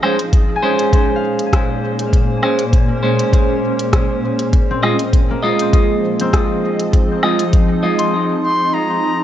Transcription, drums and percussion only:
0.03 low woodblock
0.19 closed hi-hat
0.33 kick, closed hi-hat
0.79 closed hi-hat
0.93 kick, closed hi-hat
1.39 closed hi-hat
1.53 kick, cross-stick, closed hi-hat
1.99 closed hi-hat
2.13 kick, closed hi-hat
2.43 low woodblock
2.59 closed hi-hat
2.73 kick, closed hi-hat
3.19 closed hi-hat
3.33 kick, closed hi-hat
3.79 closed hi-hat
3.93 kick, cross-stick, closed hi-hat
4.39 closed hi-hat
4.53 kick, closed hi-hat
4.83 low woodblock
4.99 closed hi-hat
5.13 kick, closed hi-hat
5.59 closed hi-hat
5.73 kick, closed hi-hat
6.20 closed hi-hat
6.33 kick, cross-stick, closed hi-hat
6.80 closed hi-hat
6.93 kick, closed hi-hat
7.23 low woodblock
7.39 closed hi-hat
7.53 kick, closed hi-hat
7.99 closed hi-hat

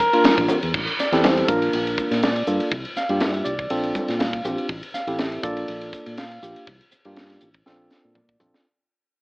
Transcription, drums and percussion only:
0.00 kick, hi-hat pedal
0.13 ride
0.24 snare, ride, high conga
0.38 kick, ride
0.48 hi-hat pedal, low conga
0.63 ride
0.74 kick, crash, muted conga
0.87 ride
0.99 snare, hi-hat pedal
1.12 snare, ride
1.24 snare, ride, muted conga, high conga
1.37 ride
1.48 kick, hi-hat pedal
1.62 ride
1.73 ride, muted conga
1.87 ride
1.98 kick, hi-hat pedal, muted conga
2.11 snare, ride
2.23 snare, ride, high conga
2.36 ride
2.47 hi-hat pedal
2.60 ride
2.71 kick, ride, muted conga
2.85 ride
2.96 snare, hi-hat pedal
3.09 ride
3.20 snare, ride, muted conga, high conga
3.34 ride
3.45 hi-hat pedal
3.59 kick, ride
3.70 ride, muted conga
3.83 ride
3.95 kick, hi-hat pedal, muted conga, high conga
4.08 snare, ride
4.20 snare, ride, high conga
4.33 kick, ride
4.45 hi-hat pedal, low conga
4.58 ride
4.69 kick, ride
4.83 ride
4.94 snare, hi-hat pedal
5.07 ride
5.19 snare, ride
5.32 ride
5.43 kick, hi-hat pedal
5.57 ride
5.68 ride
5.81 ride
5.93 kick, hi-hat pedal
6.06 ride
6.17 snare, ride
6.31 ride
6.43 hi-hat pedal
6.56 ride
6.67 kick, ride
6.81 ride
6.91 hi-hat pedal
7.05 ride
7.16 snare, ride
7.30 snare, ride
7.41 hi-hat pedal
7.54 kick, ride
7.66 snare
7.90 snare, hi-hat pedal
8.15 mid tom
8.29 kick
8.40 floor tom, hi-hat pedal
8.54 snare

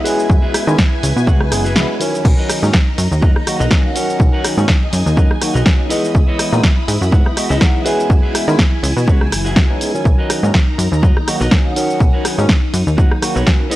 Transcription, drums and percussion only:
0.05 open hi-hat, shaker
0.19 shaker
0.30 kick, shaker
0.54 cross-stick, open hi-hat, shaker
0.68 shaker
0.78 kick, snare, shaker
1.03 open hi-hat, shaker
1.17 shaker
1.27 kick, shaker
1.41 cross-stick
1.52 cross-stick, open hi-hat, shaker
1.66 shaker
1.76 snare, shaker
2.01 open hi-hat, shaker
2.15 shaker
2.25 kick, crash, shaker
2.50 cross-stick, open hi-hat, shaker
2.64 shaker
2.73 kick, snare, shaker
2.98 open hi-hat, shaker
3.12 shaker
3.22 kick, shaker
3.36 cross-stick
3.47 cross-stick, open hi-hat, shaker
3.61 shaker
3.71 kick, snare, shaker
3.96 open hi-hat, shaker
4.10 shaker
4.20 kick, shaker
4.44 cross-stick, open hi-hat, shaker
4.58 shaker
4.68 kick, snare, shaker
4.93 open hi-hat, shaker
5.07 shaker
5.17 kick, shaker
5.31 cross-stick
5.42 cross-stick, open hi-hat, shaker
5.56 shaker
5.66 kick, snare, shaker
5.90 open hi-hat, shaker
6.04 shaker
6.15 kick, shaker
6.39 cross-stick, open hi-hat, shaker
6.53 shaker
6.63 kick, snare, shaker
6.88 open hi-hat, shaker
7.02 shaker
7.12 kick, shaker
7.26 cross-stick
7.37 cross-stick, open hi-hat, shaker
7.51 shaker
7.61 kick, snare, shaker
7.86 open hi-hat, shaker
8.00 shaker
8.10 kick, shaker
8.35 cross-stick, open hi-hat, shaker
8.49 shaker
8.59 kick, snare, shaker
8.84 open hi-hat, shaker
8.98 shaker
9.08 kick, shaker
9.21 cross-stick
9.32 cross-stick, open hi-hat, shaker
9.46 shaker
9.56 kick, snare, shaker
9.81 open hi-hat, shaker
9.95 shaker
10.05 kick, shaker
10.30 cross-stick, open hi-hat, shaker
10.44 shaker
10.54 kick, snare, shaker
10.79 open hi-hat, shaker
10.93 shaker
11.03 kick, shaker
11.17 cross-stick
11.28 cross-stick, open hi-hat, shaker
11.41 shaker
11.51 kick, snare, shaker
11.76 open hi-hat, shaker
11.90 shaker
12.00 kick, shaker
12.25 cross-stick, open hi-hat, shaker
12.39 shaker
12.49 kick, snare, shaker
12.74 open hi-hat, shaker
12.88 shaker
12.98 kick, shaker
13.11 cross-stick
13.22 cross-stick, open hi-hat, shaker
13.37 shaker
13.47 kick, snare, shaker
13.71 open hi-hat, shaker

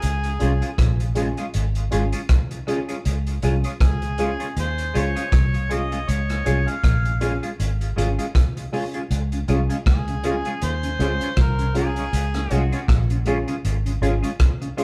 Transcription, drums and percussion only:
0.02 closed hi-hat
0.24 closed hi-hat
0.40 closed hi-hat
0.62 closed hi-hat
0.78 kick, cross-stick, closed hi-hat
1.00 closed hi-hat
1.15 closed hi-hat
1.37 closed hi-hat
1.54 closed hi-hat
1.75 closed hi-hat
1.92 closed hi-hat
2.12 closed hi-hat
2.29 kick, cross-stick, closed hi-hat
2.51 closed hi-hat
2.68 closed hi-hat
2.89 closed hi-hat
3.05 closed hi-hat
3.27 closed hi-hat
3.42 closed hi-hat
3.64 closed hi-hat
3.81 kick, cross-stick, closed hi-hat
4.02 closed hi-hat
4.18 closed hi-hat
4.40 closed hi-hat
4.57 closed hi-hat
4.78 closed hi-hat
4.95 closed hi-hat
5.16 closed hi-hat
5.32 kick, cross-stick, closed hi-hat
5.54 closed hi-hat
5.71 closed hi-hat
5.92 closed hi-hat
6.08 closed hi-hat
6.29 cross-stick, closed hi-hat
6.46 closed hi-hat
6.68 closed hi-hat
6.84 kick, cross-stick, closed hi-hat
7.05 closed hi-hat
7.21 closed hi-hat
7.43 closed hi-hat
7.60 closed hi-hat
7.81 closed hi-hat
7.98 closed hi-hat
8.19 closed hi-hat
8.35 kick, cross-stick, closed hi-hat
8.57 closed hi-hat
8.73 open hi-hat
8.94 closed hi-hat
9.11 closed hi-hat
9.32 closed hi-hat
9.48 closed hi-hat
9.70 closed hi-hat
9.86 kick, cross-stick, closed hi-hat
10.08 closed hi-hat
10.24 closed hi-hat
10.45 closed hi-hat
10.62 closed hi-hat
10.83 closed hi-hat
11.00 closed hi-hat
11.21 closed hi-hat
11.37 kick, cross-stick, closed hi-hat
11.59 closed hi-hat
11.75 closed hi-hat
11.96 closed hi-hat
12.13 closed hi-hat
12.34 cross-stick, closed hi-hat
12.51 closed hi-hat
12.72 closed hi-hat
12.88 kick, cross-stick, closed hi-hat
13.10 closed hi-hat
13.26 closed hi-hat
13.48 closed hi-hat
13.65 closed hi-hat
13.86 closed hi-hat
14.03 closed hi-hat
14.24 closed hi-hat
14.40 kick, cross-stick, closed hi-hat
14.62 closed hi-hat
14.78 closed hi-hat

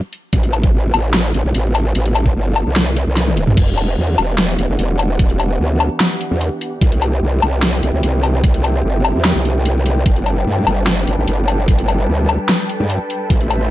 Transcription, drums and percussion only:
0.13 closed hi-hat
0.33 kick, closed hi-hat
0.43 closed hi-hat
0.53 closed hi-hat, low woodblock
0.64 kick
0.94 closed hi-hat, low woodblock
1.14 snare, closed hi-hat
1.34 closed hi-hat
1.55 closed hi-hat
1.75 closed hi-hat, low woodblock
1.95 closed hi-hat
2.05 closed hi-hat
2.15 closed hi-hat, low woodblock
2.26 kick
2.56 closed hi-hat, low woodblock
2.76 snare, closed hi-hat
2.96 closed hi-hat
3.17 snare, closed hi-hat
3.27 high tom
3.37 closed hi-hat
3.47 mid tom
3.57 kick, closed hi-hat, crash
3.68 closed hi-hat
3.78 closed hi-hat, low woodblock
4.18 closed hi-hat, low woodblock
4.38 snare, closed hi-hat
4.59 closed hi-hat
4.79 closed hi-hat
4.99 closed hi-hat, low woodblock
5.19 kick, closed hi-hat
5.30 closed hi-hat
5.40 closed hi-hat, low woodblock
5.80 closed hi-hat, low woodblock
6.00 snare, closed hi-hat
6.21 closed hi-hat
6.41 closed hi-hat
6.61 closed hi-hat
6.81 kick, closed hi-hat
6.92 closed hi-hat
7.02 closed hi-hat, low woodblock
7.42 closed hi-hat, low woodblock
7.63 snare, closed hi-hat
7.83 closed hi-hat
8.03 closed hi-hat
8.23 closed hi-hat, low woodblock
8.44 kick, closed hi-hat
8.54 closed hi-hat
8.64 closed hi-hat, low woodblock
9.05 closed hi-hat, low woodblock
9.25 snare, closed hi-hat
9.45 closed hi-hat
9.65 closed hi-hat
9.86 closed hi-hat
10.06 kick, closed hi-hat
10.16 closed hi-hat
10.26 closed hi-hat, low woodblock
10.67 closed hi-hat, low woodblock
10.87 snare, closed hi-hat
11.07 closed hi-hat
11.28 closed hi-hat
11.48 closed hi-hat, low woodblock
11.68 kick, closed hi-hat
11.78 closed hi-hat
11.88 closed hi-hat, low woodblock
12.29 closed hi-hat, low woodblock
12.49 snare, closed hi-hat
12.69 closed hi-hat
12.90 closed hi-hat
13.10 closed hi-hat
13.30 kick, closed hi-hat
13.41 closed hi-hat
13.50 closed hi-hat, low woodblock

